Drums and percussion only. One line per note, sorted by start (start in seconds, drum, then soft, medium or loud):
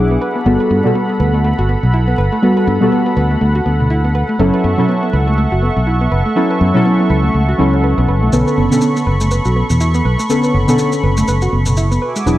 8.33 maracas medium
8.48 maracas soft
8.72 maracas medium
8.81 maracas medium
8.96 maracas soft
9.21 maracas medium
9.31 maracas medium
9.45 maracas soft
9.70 maracas medium
9.81 maracas medium
9.94 maracas soft
10.19 maracas medium
10.30 maracas medium
10.43 maracas soft
10.69 maracas medium
10.79 maracas medium
10.92 maracas soft
11.17 maracas medium
11.28 maracas medium
11.42 maracas soft
11.66 maracas medium
11.77 maracas medium
11.92 maracas soft
12.16 maracas medium
12.27 maracas medium